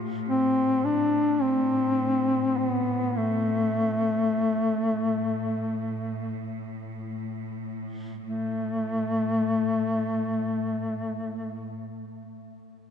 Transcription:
Already playing: A2
0.29 C4
0.85 D4
1.42 C4
2.57 C4
2.68 B3
3.17 A3
8.24 A2 A3

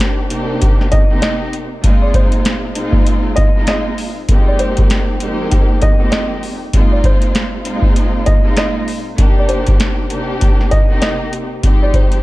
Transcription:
Already playing: C3 A#3 D4 D#4 G4 C5
0.00 snare, closed hi-hat
0.29 C3 A#3 D4 D#4 G4, closed hi-hat
0.62 kick, closed hi-hat
0.81 snare
0.92 D#5, kick, closed hi-hat
1.09 C3 A#3 C4 D#4 G4
1.22 D#5, snare, closed hi-hat
1.53 closed hi-hat
1.84 A#2 G#3 C4 D#4 F4, kick, closed hi-hat
2.02 D5
2.14 C5, kick, closed hi-hat
2.32 closed hi-hat
2.45 snare, closed hi-hat
2.74 A#2 G#3 C4 D#4 F4, closed hi-hat
2.93 kick
3.06 closed hi-hat
3.36 D#5, kick, closed hi-hat
3.56 A#2 G#3 C4 D#4 F4
3.67 D#5, snare, closed hi-hat
3.98 open hi-hat
4.29 F2 G#3 A#3 C4 D#4 G4, kick, closed hi-hat
4.47 D5
4.59 C5, closed hi-hat
4.77 kick, closed hi-hat
4.90 snare, closed hi-hat
5.20 F2 G#3 A#3 C4 D#4 G4, closed hi-hat
5.52 kick, closed hi-hat
5.82 D#5, kick, closed hi-hat
5.98 F2 G#3 A#3 C4 D#4 G4
6.12 D#5, snare, closed hi-hat
6.43 open hi-hat
6.73 A#2 G#3 C4 D#4 F4, kick, closed hi-hat
6.92 D5
7.04 C5, kick, closed hi-hat
7.22 closed hi-hat
7.35 snare, closed hi-hat
7.63 A#2 G#3 C4 D#4 F4, closed hi-hat
7.82 kick
7.96 closed hi-hat
8.26 D#5, kick, closed hi-hat
8.44 A#2 G#3 C4 D#4 F4
8.57 D#5, snare, closed hi-hat
8.88 open hi-hat
9.18 C3 A#3 D4 D#4 G4, kick, closed hi-hat
9.38 D5
9.48 C5, closed hi-hat
9.67 kick, closed hi-hat
9.80 snare, closed hi-hat
10.09 C3 A#3 D4 D#4 G4, closed hi-hat
10.41 kick, closed hi-hat
10.61 snare
10.71 D#5, kick, closed hi-hat
10.89 C3 A#3 C4 D#4 G4
11.02 D#5, snare, closed hi-hat
11.33 closed hi-hat
11.62 F2 G#3 C4 D#4 G4, kick, closed hi-hat
11.82 D5
11.94 C5, kick, closed hi-hat
12.12 closed hi-hat

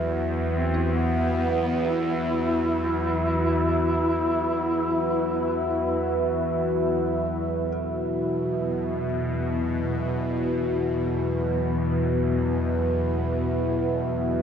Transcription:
Already playing: E2 E4 F#4 B4 E5
0.49 C4
0.74 E4
0.94 B3
1.87 E4
7.29 E2 B2
7.72 A4

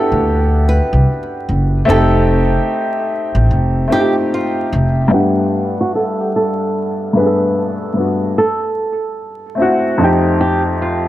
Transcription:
Already playing: B3 D4 E4 F#4 G4 A4 F#5
0.12 D2
0.69 B4
0.93 C2
1.49 F#1
1.85 F1 A3 C4
1.90 D#4 G4 A4
3.35 A1
3.51 F1
3.88 A3 C4
3.92 D#4 F4 G4
4.00 G4
4.34 F4
4.73 F1
5.08 G2 A3 B3
5.13 D4 G4 F#5
5.81 F#4
5.95 A4
6.20 G4
6.36 A4
7.13 G2 A3 B3 B4
7.18 D4 G#4
7.26 A4
7.94 G2 A3 B3
7.98 D4 F#4
8.38 A4
9.55 A3 C4
9.59 E4 F#4
9.98 F2 A3 C4
10.02 D#4 G4
10.41 G4
10.82 F4

